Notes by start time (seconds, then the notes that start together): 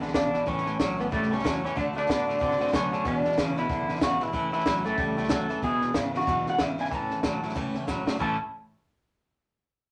Already playing: B1
0.00 E2 D3 E3 G#3 D4 E4 B4 E5 G#5, snare
0.08 snare
0.13 A#1 E2 B2 C#3 E3 G#3 D4 E4 B4 E5 G#5, kick, snare, hi-hat pedal
0.33 E2 B2 E3 G#3 D4 E4 B4 E5 B5, snare
0.46 A1 A2 E3 A3 C#4 E4 C#5 E5 A5, kick, snare
0.58 snare
0.65 A2 E3 A3 C#4 E4 C#5 E5 A5, snare
0.79 B1 A2 E3 F#3 A3 C#4 E4 C#5 E5 A5, kick, snare, hi-hat pedal
0.97 A2 E3 A3 B3 C#4 E4 C#5 E5 A5, snare
1.09 C#2 A2 E3 G3 A3 C#4 E4 C#5 A5, kick, snare
1.22 snare
1.30 A2 G3 A3 C#4 E4 C#5 E5 A5, snare
1.39 snare
1.43 E2 A2 E3 F#3 A3 C#4 E4 C#5 E5 A5, kick, snare, hi-hat pedal
1.63 A2 E3 A3 C#4 E4 C#5 E5 A5, snare
1.75 D2 D3 A3 D4 F#4 D5 F#5 A5, kick, snare
1.93 D3 A3 D4 F#4 D5 F#5 A5, snare
2.07 A2 D3 A3 B3 D4 F#4 F#5 A5, kick, snare, hi-hat pedal
2.25 D3 A3 D4 F#4 D5 F#5 A5
2.29 A3, snare
2.39 G#2 D3 A3 C4 D4 F#4 D5 F#5 G#5, kick, snare
2.51 snare
2.58 D3 A3 C4 D4 F#4 D5 F#5 G#5, snare
2.67 snare
2.73 F#2 D3 A3 B3 C#4 D4 F#4 D5 F#5 B5, kick, snare, hi-hat pedal
2.91 D3 A3 D4 F#4 D5 F#5 A5, snare
3.04 E2 B2 E3 G#3 D4 E4 B4 E5 G#5, kick, snare
3.24 E2 B2 E3 G#3 D4 E4 B4 E5 G#5, snare
3.32 snare
3.36 D2 E2 B2 C#3 E3 G#3 D4 E4 B4 E5 G#5, kick, snare, hi-hat pedal
3.46 C#4
3.55 E2 B2 E3 G#3 D4 E4 B4 E5 F#5, snare
3.68 B1 E2 D3 E3 G#3 D4 E4 B4 E5 G#5, kick, snare
3.88 E2 D3 G#3 D4 E4 B4 E5 G#5, snare
3.92 E3, snare
4.01 G#1 E2 B2 C#3 E3 G#3 D4 E4 F#4 B4 E5 B5, kick, snare, hi-hat pedal
4.20 E2 B2 E3 G#3 D4 E4 B4 E5 G#5, snare
4.32 A1 A2 E3 A3 C#4 E4 C#5 E5 A5, kick, snare
4.52 A2 E3 A3 C#4 E4 C#5 E5 A5, snare
4.59 snare
4.65 B1 A2 E3 F#3 A3 C#4 E4 C#5 E5, kick, snare, hi-hat pedal
4.84 A2 E3 A3 C#4 E4 C#5 E5 G#5, snare
4.97 C#2 A2 E3 G3 A3 C#4 E4 C#5 E5 F#5, kick, snare
5.17 A2 G3 A3 C#4 E4 C#5 E5 A5, snare
5.23 snare
5.29 D2 A2 E3 F#3 A3 C#4 E4 A4 C#5 E5 F#5, kick, snare, hi-hat pedal
5.48 A2 E3 A3 C#4 E4 C#5 E5 A5, snare
5.62 E2 B2 E3 G#3 D4 E4 G#4 B4 E5 G#5, kick, snare
5.81 E3 G#3 D4 E4 B4 E5 G#5, snare
5.94 E2 G#2 C#3 E3 G#3 D4 E4 B4 E5 G#5, kick, snare, hi-hat pedal
6.12 E2 C#3 G#3 D4 E4 B4 E5 G#5, snare
6.17 E3 F#4, snare
6.26 E2 F#2 B2 E3 G#3 D4 E4 B4 E5 G#5, kick, snare
6.46 E3 G#3 D4 E4 B4 E5 F#5 G#5, muted upright bass stroke, snare
6.58 E2 G#2 C#3 E3 G#3 D4 E4 B4 E5 G#5, kick, snare, hi-hat pedal
6.78 E2 C#3 E3 G#3 D4 E4 B4 E5 G#5, snare
6.84 snare
6.91 A2 E3 A3 C#4 E4 C#5 E5 A5, kick, snare
6.95 A5
7.10 A3 C#4 E4 C#5 E5 A5, snare
7.23 A2 B2 E3 F#3 A3 C#4 E4 C#5 E5 A5, kick, snare, hi-hat pedal
7.43 A2 F#3 A3 C#4 E4 C#5 E5 A5, snare
7.49 snare
7.55 A2 C#3 E3 A3 C#4 E4 C#5 E5 A5, kick, snare
7.74 A3 C#4 E4 C#5 E5 G#5, snare
7.87 G#2 A2 E3 F#3 A3 C#4 E4 C#5 E5 B5, kick, snare, hi-hat pedal
8.07 A2 F#3 A3 C#4 E4 C#5 E5 A5, snare
8.18 A1 A2 E3 A3 C#4 E4 A4 C#5 E5 A5, kick